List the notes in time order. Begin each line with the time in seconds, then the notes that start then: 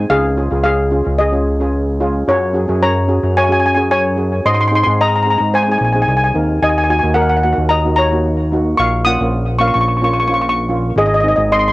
Already playing: C4 D#4 G#4 G#5
0.10 C#2 G#4 F5
0.37 C#4 F4 G#4
0.51 C#2 C#4 F4 G#4
0.64 G#4 F5
0.91 C#4 F4 G#4
1.07 C#2
1.19 G#4 D#5
1.32 C#4 F4 G#4
1.60 C#4 F4 G#4
2.00 C#4 F4 G#4
2.28 F#2 F#4 C#5
2.53 C#4 F#4 G#4
2.68 F#2 C#4 F#4 G#4
2.83 C#5 A#5
3.08 C#4 F#4 G#4
3.23 F#2
3.37 C#5 G#5
3.44 G#5
3.49 C#4 F#4 G#4 G#5
3.60 G#5
3.66 G#5
3.75 C#4 F#4 G#4 G#5
3.91 C#5 G#5
4.17 C#4 F#4 G#4
4.45 G#2 D#5 C6
4.54 C6
4.61 C6
4.68 C4 C6
4.72 D#4 G#4 C6
4.84 G#2 C4 D#4 G#4 C6
5.01 D#5 A#5
5.08 A#5
5.16 A#5
5.23 C4 D#4 A#5
5.27 G#4 A#5
5.38 G#2 A#5
5.54 C5 G#5
5.63 G#5
5.68 C4 D#4 G#4 G#5
5.78 A#1 G#5
5.85 G#5
5.93 C4 D#4 G#4 G#5
6.02 G#5
6.08 C2 G#5
6.17 G#5
6.24 G#5
6.34 D#2 C4 D#4 A#4
6.62 D#2 D#5 G#5
6.69 G#5
6.78 G#5
6.84 G#5
6.89 A#3 D#4 F#4 G#5
6.99 G#5
7.04 D#2 A#3 D#4 F#4
7.14 A#4 F#5
7.22 F#5
7.30 F#5
7.37 F#5
7.44 A#3 D#4 F#4 F#5
7.53 F#5
7.58 D#2
7.69 D#5 A#5
7.85 A#3 D#4 F#4
7.96 C#5 A#5
8.12 A#3 D#4 F#4
8.52 A#3 D#4 F#4
8.77 A#1 F5 C#6
9.05 A#3 C#4 F4 F#5 D#6
9.21 A#1 A#3 C#4 F4
9.59 A#3 C#4 F4 F5 C#6
9.68 C#6
9.74 A#1 C#6
9.81 C#6
9.88 C#6
9.97 C#6
10.02 A#3 C#4 F4 C#6
10.14 C#6
10.20 C#6
10.28 A#3 C#4 F4 C#6
10.34 C#6
10.42 C#6
10.49 C#6
10.68 A#3 C#4 F4
10.96 G#1 G#4 D#5
11.06 D#5
11.14 D#5
11.20 C4 D#4 D#5
11.25 G#4 D#5
11.36 G#1 C4 D#4 G#4 D#5
11.52 D#5 C6
11.59 C6
11.68 C6